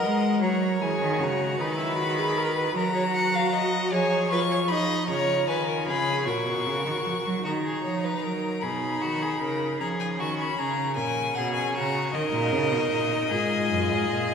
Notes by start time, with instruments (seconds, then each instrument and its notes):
Already playing: viola A#4, violin D#5 F#5
0.03 cello G#3
0.41 cello F#3, viola F#4, violin C#5 A#5
0.81 cello E3, viola G#4, violin G#5
1.01 cello D#3
1.20 cello C#3, viola F#4, violin A#5
1.59 cello D#3, viola D#4, violin B4 B5
1.78 viola E4
1.99 viola F#4
2.19 viola G#4
2.38 viola A#4
2.57 viola B4
2.75 cello F#3, viola F#4, violin A#4 A#5
2.94 violin C#5
3.15 violin F#5
3.35 violin F5
3.53 violin D#5
3.91 cello F3, viola G#4, violin C#5 G#5
4.29 viola F4, violin B4 C#6
4.51 violin C#5
4.68 viola D#4, violin D#5 B5
5.08 cello C#3, viola F4, violin C#5 A#5
5.47 cello D#3, violin B4 G#5
5.68 violin A#4
5.87 cello C#3, violin G#4 B5
6.26 cello A#2, viola F#4, violin A#4 C#6
6.46 cello B2
6.66 cello C#3
6.86 cello D#3
7.06 cello F3
7.26 cello F#3
7.44 cello D#3, viola D#4, violin F#4 A#5
7.65 violin G#4
7.84 cello F3, violin C#5
8.04 violin B4
8.24 cello F#3, violin A#4
8.61 cello B2, viola D#4, violin G#4 B5
9.01 cello D#3, violin F#4
9.22 violin G#4
9.41 cello C#3, violin A#4
9.79 cello F3, viola C#4, violin G#4 A#5
10.00 violin G#5
10.19 cello D#3, violin F#4 C#6
10.39 violin B5
10.58 cello C#3, violin G#4 A#5
10.96 cello A#2, viola C#4, violin A#4 G#5
11.35 cello B2, violin G#4 F#5
11.54 violin G#5
11.74 cello C#3, violin F#4 A#5
12.13 cello D#3, viola D#4, violin A#4 D#5
12.33 cello A#2
12.52 cello C#3
12.72 cello B2
12.92 cello A#2
13.30 cello G#2, viola F4, violin G#4
13.70 cello F#2
13.90 cello G#2
14.10 cello A#2